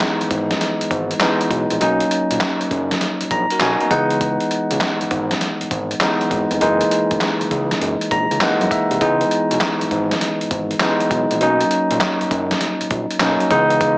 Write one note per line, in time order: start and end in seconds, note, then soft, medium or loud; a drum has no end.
0.00 0.34 E3 medium
0.00 0.34 G#3 medium
0.00 0.34 B3 medium
0.00 0.35 D#4 medium
0.00 snare loud
0.00 clap medium
0.00 closed hi-hat medium
0.21 0.25 G#1 soft
0.21 closed hi-hat soft
0.31 0.54 G#1 medium
0.31 kick medium
0.31 closed hi-hat medium
0.51 snare medium
0.51 closed hi-hat medium
0.61 snare medium
0.61 closed hi-hat medium
0.81 0.85 G#1 soft
0.81 closed hi-hat medium
0.91 1.14 G#1 medium
0.91 kick loud
0.91 closed hi-hat medium
1.11 closed hi-hat soft
1.21 1.71 E3 medium
1.21 1.72 G#3 medium
1.21 1.72 B3 medium
1.21 1.72 D#4 medium
1.21 snare loud
1.21 clap loud
1.21 closed hi-hat medium
1.41 closed hi-hat soft
1.51 1.66 B1 medium
1.51 kick medium
1.51 closed hi-hat medium
1.70 1.79 A#1 medium
1.70 closed hi-hat medium
1.81 2.05 B1 loud
1.81 2.74 F#3 medium
1.81 2.74 A#3 medium
1.81 2.75 C#4 medium
1.81 2.75 D#4 medium
1.81 closed hi-hat medium
2.00 closed hi-hat medium
2.11 closed hi-hat medium
2.31 2.39 A#1 medium
2.31 closed hi-hat medium
2.41 snare loud
2.41 clap medium
2.41 closed hi-hat medium
2.61 2.65 F#1 soft
2.61 closed hi-hat soft
2.71 2.94 F#1 loud
2.71 kick medium
2.71 closed hi-hat medium
2.91 snare medium
2.91 closed hi-hat medium
3.01 snare medium
3.01 closed hi-hat medium
3.21 3.25 A#1 medium
3.21 closed hi-hat medium
3.31 3.47 A#1 loud
3.31 3.59 A#5 medium
3.31 kick medium
3.31 closed hi-hat medium
3.50 3.61 F#4 medium
3.50 3.61 A#4 medium
3.50 closed hi-hat medium
3.60 3.77 B1 loud
3.60 3.80 D#4 medium
3.60 3.80 F#4 medium
3.60 3.89 G#5 medium
3.60 snare loud
3.60 clap loud
3.60 closed hi-hat medium
3.81 3.90 B3 medium
3.81 3.91 D#4 medium
3.81 closed hi-hat soft
3.91 4.38 C#2 loud
3.91 4.89 E3 medium
3.91 4.89 G#3 medium
3.91 4.89 B3 medium
3.91 4.89 D#4 medium
3.91 4.19 F#5 medium
3.91 kick medium
3.91 closed hi-hat medium
4.10 closed hi-hat medium
4.21 kick loud
4.21 closed hi-hat medium
4.40 closed hi-hat soft
4.51 closed hi-hat medium
4.71 4.79 C#2 medium
4.71 closed hi-hat medium
4.81 snare loud
4.81 clap medium
4.81 closed hi-hat medium
5.01 5.05 G#1 soft
5.01 closed hi-hat soft
5.11 5.34 G#1 medium
5.11 kick medium
5.11 closed hi-hat medium
5.31 snare medium
5.31 closed hi-hat medium
5.41 snare medium
5.41 closed hi-hat medium
5.61 5.65 G#1 soft
5.61 closed hi-hat soft
5.71 5.94 G#1 medium
5.71 kick medium
5.71 closed hi-hat medium
5.91 closed hi-hat soft
6.01 6.52 E3 medium
6.01 6.52 G#3 medium
6.01 6.52 B3 medium
6.01 6.53 D#4 medium
6.01 snare loud
6.01 clap medium
6.01 closed hi-hat medium
6.21 closed hi-hat soft
6.31 6.46 G#1 loud
6.31 kick medium
6.31 closed hi-hat medium
6.51 6.59 F1 loud
6.51 closed hi-hat medium
6.61 6.85 F#1 loud
6.61 7.54 E3 medium
6.61 7.54 G#3 medium
6.61 7.55 A#3 medium
6.61 7.55 D#4 medium
6.61 closed hi-hat medium
6.81 closed hi-hat medium
6.91 closed hi-hat medium
7.11 7.19 F#1 medium
7.11 kick medium
7.11 closed hi-hat medium
7.21 snare loud
7.21 clap medium
7.21 closed hi-hat medium
7.41 7.45 C#2 soft
7.41 closed hi-hat soft
7.51 7.74 C#2 medium
7.51 kick medium
7.51 closed hi-hat medium
7.71 snare medium
7.71 closed hi-hat medium
7.81 7.97 F#1 medium
7.81 closed hi-hat medium
8.01 closed hi-hat soft
8.11 8.27 A#1 medium
8.11 8.39 A#5 medium
8.11 kick loud
8.11 closed hi-hat medium
8.31 8.39 C#2 medium
8.31 closed hi-hat soft
8.41 8.92 E3 medium
8.41 8.92 G#3 medium
8.41 8.92 A#3 medium
8.41 8.93 D#4 medium
8.41 8.69 F#5 medium
8.41 snare loud
8.41 clap medium
8.41 closed hi-hat medium
8.61 8.69 F#2 loud
8.61 closed hi-hat soft
8.71 8.99 E5 medium
8.71 kick medium
8.71 closed hi-hat medium
8.91 8.99 C2 medium
8.91 closed hi-hat medium
9.01 9.24 C#2 loud
9.01 9.94 E3 medium
9.01 9.94 G#3 medium
9.01 9.95 B3 medium
9.01 9.95 D#4 medium
9.01 kick loud
9.01 closed hi-hat medium
9.21 closed hi-hat medium
9.31 closed hi-hat medium
9.51 9.59 B1 medium
9.51 closed hi-hat medium
9.61 snare loud
9.61 clap medium
9.61 closed hi-hat medium
9.81 9.85 G#1 soft
9.81 closed hi-hat soft
9.91 10.15 G#1 medium
9.91 kick medium
9.91 closed hi-hat medium
10.11 snare medium
10.11 closed hi-hat medium
10.21 snare medium
10.21 closed hi-hat medium
10.41 10.45 G#1 soft
10.41 closed hi-hat soft
10.51 10.74 G#1 medium
10.51 kick medium
10.51 closed hi-hat medium
10.71 closed hi-hat soft
10.80 11.32 E3 medium
10.80 11.32 G#3 medium
10.80 11.32 B3 medium
10.80 11.32 D#4 medium
10.80 snare loud
10.80 clap loud
10.80 closed hi-hat medium
11.00 closed hi-hat soft
11.11 11.26 B1 loud
11.11 kick medium
11.11 closed hi-hat medium
11.31 11.39 A#1 medium
11.31 closed hi-hat medium
11.41 11.64 B1 loud
11.41 12.35 F#3 medium
11.41 12.35 A#3 medium
11.41 12.35 C#4 medium
11.41 12.35 D#4 medium
11.41 closed hi-hat medium
11.61 closed hi-hat medium
11.71 closed hi-hat medium
11.91 11.99 A#1 medium
11.91 closed hi-hat medium
12.01 snare loud
12.01 clap medium
12.01 closed hi-hat medium
12.21 12.25 F#1 soft
12.21 closed hi-hat soft
12.31 12.55 F#1 medium
12.31 kick medium
12.31 closed hi-hat medium
12.51 snare medium
12.51 closed hi-hat medium
12.61 snare medium
12.61 closed hi-hat medium
12.81 12.85 A#1 medium
12.81 closed hi-hat soft
12.91 13.06 A#1 loud
12.91 kick medium
12.91 closed hi-hat medium
13.11 closed hi-hat medium
13.20 13.37 B1 medium
13.20 13.51 F#3 medium
13.20 13.51 A#3 medium
13.20 13.51 C#4 medium
13.20 13.50 D#4 medium
13.20 snare loud
13.20 clap loud
13.20 closed hi-hat medium
13.40 closed hi-hat soft
13.51 13.97 C#2 loud
13.51 13.98 E3 medium
13.51 13.98 G#3 medium
13.51 13.98 B3 medium
13.51 13.98 D#4 loud
13.51 kick medium
13.51 closed hi-hat medium
13.70 closed hi-hat medium
13.81 kick loud
13.81 closed hi-hat medium